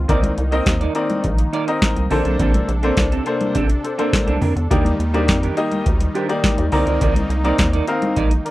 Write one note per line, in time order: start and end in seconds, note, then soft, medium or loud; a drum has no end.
0.08 0.32 C2 loud
0.08 2.09 D#3 medium
0.08 2.09 A#3 medium
0.08 0.30 C4 medium
0.08 0.23 D#4 medium
0.08 0.30 D#4 medium
0.08 2.09 D#4 medium
0.08 0.23 A#4 medium
0.08 0.30 A#4 medium
0.08 0.22 D5 medium
0.08 0.30 D5 medium
0.08 kick loud
0.08 closed hi-hat medium
0.08 low conga medium
0.23 muted clean electric guitar stroke soft
0.23 closed hi-hat medium
0.23 muted conga soft
0.23 high conga medium
0.37 0.61 C2 loud
0.37 muted clean electric guitar stroke soft
0.37 closed hi-hat medium
0.52 0.73 C4 medium
0.52 0.73 D#4 medium
0.52 0.64 D#4 medium
0.52 0.63 A#4 medium
0.52 0.73 A#4 medium
0.52 0.63 D#5 medium
0.52 0.73 D#5 loud
0.52 closed hi-hat soft
0.66 0.90 D#2 medium
0.66 muted clean electric guitar stroke soft
0.66 kick loud
0.66 snare loud
0.66 clap medium
0.66 closed hi-hat medium
0.66 muted conga soft
0.81 0.94 D#4 medium
0.81 0.95 A#4 medium
0.81 0.95 D5 medium
0.81 closed hi-hat soft
0.81 muted conga soft
0.95 1.23 C4 medium
0.95 1.23 D#4 medium
0.95 1.23 A#4 medium
0.95 1.23 D5 medium
0.95 muted clean electric guitar stroke soft
0.95 closed hi-hat medium
1.10 muted clean electric guitar stroke medium
1.10 closed hi-hat medium
1.10 high conga medium
1.24 1.48 A#1 medium
1.24 muted clean electric guitar stroke soft
1.24 kick loud
1.24 closed hi-hat medium
1.38 muted clean electric guitar stroke soft
1.38 closed hi-hat medium
1.53 1.67 D#4 medium
1.53 1.60 A#4 medium
1.53 1.67 A#4 medium
1.53 1.60 D5 medium
1.53 1.66 D5 medium
1.53 closed hi-hat medium
1.67 2.02 C4 medium
1.67 2.02 D#4 medium
1.67 2.03 A#4 medium
1.67 2.03 D#5 medium
1.67 muted clean electric guitar stroke medium
1.67 closed hi-hat medium
1.82 muted clean electric guitar stroke soft
1.82 kick loud
1.82 snare loud
1.82 clap medium
1.82 closed hi-hat medium
1.82 high conga medium
1.96 2.08 C2 medium
1.96 muted clean electric guitar stroke soft
1.96 closed hi-hat medium
1.96 muted conga soft
2.10 2.23 A#1 medium
2.10 4.68 C3 medium
2.10 2.69 A#3 medium
2.10 2.25 C4 medium
2.10 4.68 D4 medium
2.10 2.24 D4 medium
2.10 2.69 D4 medium
2.10 4.68 A4 medium
2.10 2.23 A4 medium
2.10 2.69 A4 medium
2.10 2.69 C5 loud
2.10 open hi-hat medium
2.10 low conga medium
2.25 2.37 B1 medium
2.25 2.37 C4 medium
2.25 2.37 D4 medium
2.25 2.36 A4 medium
2.25 closed hi-hat medium
2.39 2.63 A#1 loud
2.39 2.54 C4 medium
2.39 2.53 D4 medium
2.39 2.53 A4 loud
2.39 kick loud
2.39 closed hi-hat medium
2.39 muted conga soft
2.39 low conga medium
2.54 muted clean electric guitar stroke soft
2.54 closed hi-hat medium
2.54 high conga medium
2.68 2.92 A#1 loud
2.68 muted clean electric guitar stroke soft
2.68 closed hi-hat medium
2.83 3.04 A#3 medium
2.83 2.95 C4 medium
2.83 2.94 D4 medium
2.83 3.04 D4 medium
2.83 2.94 A4 medium
2.83 3.04 A4 medium
2.83 3.04 C5 loud
2.83 closed hi-hat soft
2.97 3.20 C2 loud
2.97 kick loud
2.97 snare loud
2.97 clap medium
2.97 closed hi-hat medium
2.97 muted conga soft
3.12 3.25 C4 medium
3.12 3.25 D4 medium
3.12 3.26 A4 medium
3.12 closed hi-hat medium
3.26 3.54 A#3 medium
3.26 3.54 D4 medium
3.26 3.54 A4 medium
3.26 3.54 C5 loud
3.26 muted clean electric guitar stroke soft
3.26 closed hi-hat medium
3.40 muted clean electric guitar stroke soft
3.40 closed hi-hat medium
3.40 high conga medium
3.55 3.78 A#1 medium
3.55 3.69 C4 medium
3.55 3.69 D4 medium
3.55 3.68 A4 medium
3.55 kick loud
3.55 closed hi-hat medium
3.55 muted conga soft
3.69 muted clean electric guitar stroke soft
3.69 closed hi-hat medium
3.83 3.91 A4 medium
3.83 3.91 C5 medium
3.83 muted clean electric guitar stroke soft
3.83 closed hi-hat medium
3.98 4.33 A#3 medium
3.98 4.10 C4 medium
3.98 4.33 D4 medium
3.98 4.10 D4 medium
3.98 4.10 A4 medium
3.98 4.33 A4 medium
3.98 4.33 C5 medium
3.98 closed hi-hat medium
4.13 muted clean electric guitar stroke soft
4.13 kick loud
4.13 snare loud
4.13 clap loud
4.13 closed hi-hat medium
4.13 muted conga soft
4.13 high conga medium
4.27 4.39 C2 medium
4.27 4.41 C4 medium
4.27 4.41 D4 medium
4.27 4.42 A4 medium
4.27 closed hi-hat soft
4.41 4.53 F2 medium
4.41 4.53 C4 medium
4.41 4.53 D4 medium
4.41 4.54 A#4 medium
4.41 open hi-hat medium
4.41 low conga medium
4.56 4.68 E2 medium
4.56 muted clean electric guitar stroke medium
4.56 closed hi-hat medium
4.71 4.94 D#2 loud
4.71 8.51 D#3 medium
4.71 6.71 G3 medium
4.71 4.91 A#3 medium
4.71 4.85 D4 medium
4.71 6.71 D#4 medium
4.71 4.91 D#4 medium
4.71 4.91 G4 medium
4.71 4.85 G4 medium
4.71 4.84 A#4 medium
4.71 4.92 D5 medium
4.71 kick loud
4.71 closed hi-hat medium
4.71 muted conga soft
4.71 low conga medium
4.85 muted clean electric guitar stroke soft
4.85 closed hi-hat medium
4.85 high conga medium
4.99 5.30 D#2 loud
4.99 muted clean electric guitar stroke soft
4.99 closed hi-hat medium
5.14 5.35 A#3 medium
5.14 5.26 D4 medium
5.14 5.35 D#4 medium
5.14 5.25 G4 medium
5.14 5.35 G4 medium
5.14 5.25 C5 medium
5.14 5.35 D5 loud
5.14 closed hi-hat medium
5.28 5.51 F2 loud
5.28 muted clean electric guitar stroke soft
5.28 kick loud
5.28 snare loud
5.28 clap loud
5.28 closed hi-hat medium
5.28 muted conga soft
5.43 5.56 D4 medium
5.43 5.57 G4 medium
5.43 5.57 A#4 medium
5.43 closed hi-hat medium
5.43 muted conga soft
5.57 5.85 A#3 medium
5.57 5.85 D#4 medium
5.57 5.85 G4 medium
5.57 5.85 D#5 loud
5.57 muted clean electric guitar stroke soft
5.57 closed hi-hat medium
5.72 muted clean electric guitar stroke soft
5.72 closed hi-hat medium
5.72 high conga medium
5.86 6.09 D2 loud
5.86 muted clean electric guitar stroke soft
5.86 kick loud
5.86 closed hi-hat medium
6.00 muted clean electric guitar stroke soft
6.00 closed hi-hat medium
6.00 muted conga soft
6.15 6.29 D4 medium
6.15 6.22 G4 medium
6.15 6.29 G4 medium
6.15 6.28 A#4 medium
6.15 6.22 C5 medium
6.15 closed hi-hat medium
6.29 6.64 A#3 medium
6.29 6.64 D#4 medium
6.29 6.64 G4 medium
6.29 6.64 D5 loud
6.29 muted clean electric guitar stroke medium
6.29 closed hi-hat medium
6.44 muted clean electric guitar stroke soft
6.44 kick loud
6.44 snare loud
6.44 clap medium
6.44 closed hi-hat medium
6.44 muted conga soft
6.44 high conga medium
6.58 6.70 D#2 medium
6.58 muted clean electric guitar stroke medium
6.58 closed hi-hat soft
6.72 6.84 C2 loud
6.72 8.51 A#3 medium
6.72 7.30 C4 medium
6.72 7.30 D#4 medium
6.72 6.87 D#4 medium
6.72 8.51 D#4 medium
6.72 7.30 A#4 medium
6.72 6.86 A#4 medium
6.72 7.30 D5 loud
6.72 6.86 D5 medium
6.72 open hi-hat medium
6.72 low conga medium
6.87 6.98 C#2 medium
6.87 6.99 D#4 medium
6.87 6.99 A#4 medium
6.87 6.98 D5 medium
6.87 closed hi-hat medium
7.01 7.25 C2 loud
7.01 7.16 D#4 medium
7.01 7.15 A#4 medium
7.01 7.15 D5 medium
7.01 kick loud
7.01 closed hi-hat medium
7.01 low conga medium
7.15 muted clean electric guitar stroke soft
7.15 closed hi-hat medium
7.15 high conga medium
7.29 7.53 C2 loud
7.29 muted clean electric guitar stroke soft
7.29 closed hi-hat medium
7.44 7.65 C4 medium
7.44 7.65 D#4 medium
7.44 7.56 D#4 medium
7.44 7.66 A#4 medium
7.44 7.56 A#4 medium
7.44 7.56 D5 medium
7.44 7.66 D5 loud
7.44 closed hi-hat medium
7.58 7.82 D#2 loud
7.58 muted clean electric guitar stroke soft
7.58 kick loud
7.58 snare loud
7.58 clap medium
7.58 closed hi-hat medium
7.58 muted conga soft
7.73 7.87 D#4 medium
7.73 7.87 A#4 medium
7.73 7.87 D5 medium
7.73 closed hi-hat medium
7.73 muted conga soft
7.87 8.15 C4 medium
7.87 8.15 D#4 medium
7.87 8.16 A#4 medium
7.87 8.16 F5 medium
7.87 muted clean electric guitar stroke soft
7.87 closed hi-hat medium
8.02 muted clean electric guitar stroke medium
8.02 closed hi-hat medium
8.02 high conga medium
8.16 8.40 A#1 medium
8.16 8.31 D#4 medium
8.16 8.31 A#4 medium
8.16 8.30 D5 medium
8.16 kick loud
8.16 closed hi-hat medium
8.31 muted clean electric guitar stroke soft
8.31 closed hi-hat medium
8.31 muted conga soft
8.45 8.51 A#4 medium
8.45 8.51 D5 medium
8.45 muted clean electric guitar stroke soft
8.45 closed hi-hat medium